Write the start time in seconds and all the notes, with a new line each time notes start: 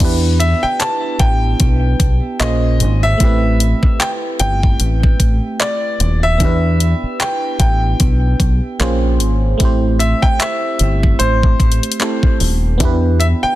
Already playing: B3
0.00 E2 D4 E4 G4, kick, closed hi-hat, crash
0.05 B4
0.40 E5, closed hi-hat
0.63 G5, muted fingered electric bass stroke
0.80 A5, clap, closed hi-hat
1.19 A1 G5, kick, closed hi-hat
1.60 B1, kick, closed hi-hat
2.00 B1, kick, closed hi-hat
2.39 A#1 A#3 C#4 F4 G#4 C5 D#5, clap, closed hi-hat
2.80 G#1, closed hi-hat
3.03 E5
3.18 A1 A3 B3 E4, kick, closed hi-hat
3.23 C4 G4 B4
3.60 closed hi-hat
3.83 muted fingered electric bass stroke, kick
4.00 G5, clap, closed hi-hat
4.40 G1 G5, closed hi-hat
4.63 kick
4.80 A1, closed hi-hat
5.03 kick
5.20 A1, kick, closed hi-hat
5.60 D5, clap, closed hi-hat
6.00 D#1, closed hi-hat
6.23 E5
6.38 E2 B3 D4 E4, kick, closed hi-hat
6.43 G4 B4
6.80 closed hi-hat
7.03 muted fingered electric bass stroke
7.20 G5, clap, closed hi-hat
7.60 A1 G5, kick, closed hi-hat
8.00 B1, kick, closed hi-hat
8.40 B1, kick, closed hi-hat
8.79 A#1 A#3 C#4 F4 G#4 C5, clap, closed hi-hat
9.20 G#1, closed hi-hat
9.58 A1 A3 C4 E4, kick, closed hi-hat
9.63 G4 C5
9.99 E5, closed hi-hat
10.22 G5, muted fingered electric bass stroke, kick
10.39 E5, clap, closed hi-hat
10.79 G1, closed hi-hat
11.03 kick
11.19 A1 C5, closed hi-hat
11.43 kick
11.60 A1, kick, closed hi-hat
11.72 closed hi-hat
11.83 closed hi-hat
11.92 closed hi-hat
11.99 A3 C4 E4 G4 A4, clap, closed hi-hat
12.23 kick
12.40 D#1, open hi-hat
12.78 E2 B3 D4 E4, kick, closed hi-hat
12.83 G4 B4
13.20 E5, closed hi-hat
13.43 G5, muted fingered electric bass stroke